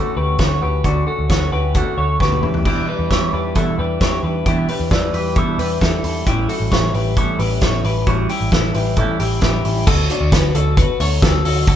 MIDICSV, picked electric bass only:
0, 0, Header, 1, 2, 480
1, 0, Start_track
1, 0, Key_signature, 2, "major"
1, 0, Tempo, 451467
1, 898, Time_signature, 4, 2, 24, 8
1, 12502, End_track
2, 0, Start_track
2, 0, Title_t, "Picked electric bass"
2, 0, Program_c, 0, 34
2, 175, Note_on_c, 0, 38, 90
2, 373, Note_off_c, 0, 38, 0
2, 415, Note_on_c, 0, 38, 78
2, 613, Note_off_c, 0, 38, 0
2, 659, Note_on_c, 0, 38, 85
2, 855, Note_off_c, 0, 38, 0
2, 898, Note_on_c, 0, 38, 83
2, 1095, Note_off_c, 0, 38, 0
2, 1262, Note_on_c, 0, 38, 81
2, 1359, Note_off_c, 0, 38, 0
2, 1376, Note_on_c, 0, 38, 66
2, 1574, Note_off_c, 0, 38, 0
2, 1617, Note_on_c, 0, 38, 85
2, 1914, Note_off_c, 0, 38, 0
2, 2101, Note_on_c, 0, 38, 87
2, 2297, Note_off_c, 0, 38, 0
2, 2340, Note_on_c, 0, 38, 78
2, 2537, Note_off_c, 0, 38, 0
2, 2580, Note_on_c, 0, 40, 79
2, 2974, Note_off_c, 0, 40, 0
2, 3178, Note_on_c, 0, 40, 79
2, 3278, Note_off_c, 0, 40, 0
2, 3300, Note_on_c, 0, 40, 84
2, 3498, Note_off_c, 0, 40, 0
2, 3542, Note_on_c, 0, 40, 82
2, 3837, Note_off_c, 0, 40, 0
2, 4024, Note_on_c, 0, 40, 82
2, 4220, Note_off_c, 0, 40, 0
2, 4264, Note_on_c, 0, 40, 76
2, 4460, Note_off_c, 0, 40, 0
2, 4501, Note_on_c, 0, 40, 79
2, 4699, Note_off_c, 0, 40, 0
2, 4740, Note_on_c, 0, 40, 78
2, 4938, Note_off_c, 0, 40, 0
2, 5100, Note_on_c, 0, 40, 82
2, 5199, Note_off_c, 0, 40, 0
2, 5222, Note_on_c, 0, 40, 90
2, 5419, Note_off_c, 0, 40, 0
2, 5456, Note_on_c, 0, 40, 85
2, 5754, Note_off_c, 0, 40, 0
2, 5936, Note_on_c, 0, 40, 81
2, 6136, Note_off_c, 0, 40, 0
2, 6180, Note_on_c, 0, 40, 83
2, 6378, Note_off_c, 0, 40, 0
2, 6422, Note_on_c, 0, 40, 83
2, 6619, Note_off_c, 0, 40, 0
2, 6662, Note_on_c, 0, 33, 95
2, 6859, Note_off_c, 0, 33, 0
2, 7019, Note_on_c, 0, 33, 85
2, 7119, Note_off_c, 0, 33, 0
2, 7141, Note_on_c, 0, 33, 89
2, 7339, Note_off_c, 0, 33, 0
2, 7378, Note_on_c, 0, 33, 80
2, 7675, Note_off_c, 0, 33, 0
2, 7860, Note_on_c, 0, 33, 89
2, 8058, Note_off_c, 0, 33, 0
2, 8098, Note_on_c, 0, 33, 90
2, 8297, Note_off_c, 0, 33, 0
2, 8335, Note_on_c, 0, 33, 91
2, 8535, Note_off_c, 0, 33, 0
2, 8578, Note_on_c, 0, 33, 91
2, 8777, Note_off_c, 0, 33, 0
2, 8937, Note_on_c, 0, 33, 85
2, 9038, Note_off_c, 0, 33, 0
2, 9058, Note_on_c, 0, 33, 80
2, 9257, Note_off_c, 0, 33, 0
2, 9298, Note_on_c, 0, 33, 78
2, 9595, Note_off_c, 0, 33, 0
2, 9777, Note_on_c, 0, 33, 85
2, 9976, Note_off_c, 0, 33, 0
2, 10013, Note_on_c, 0, 33, 77
2, 10213, Note_off_c, 0, 33, 0
2, 10252, Note_on_c, 0, 33, 91
2, 10452, Note_off_c, 0, 33, 0
2, 10496, Note_on_c, 0, 38, 92
2, 10694, Note_off_c, 0, 38, 0
2, 10853, Note_on_c, 0, 38, 110
2, 10954, Note_off_c, 0, 38, 0
2, 10976, Note_on_c, 0, 38, 108
2, 11173, Note_off_c, 0, 38, 0
2, 11215, Note_on_c, 0, 38, 93
2, 11510, Note_off_c, 0, 38, 0
2, 11694, Note_on_c, 0, 38, 100
2, 11891, Note_off_c, 0, 38, 0
2, 11934, Note_on_c, 0, 38, 91
2, 12131, Note_off_c, 0, 38, 0
2, 12177, Note_on_c, 0, 38, 101
2, 12372, Note_off_c, 0, 38, 0
2, 12414, Note_on_c, 0, 38, 103
2, 12502, Note_off_c, 0, 38, 0
2, 12502, End_track
0, 0, End_of_file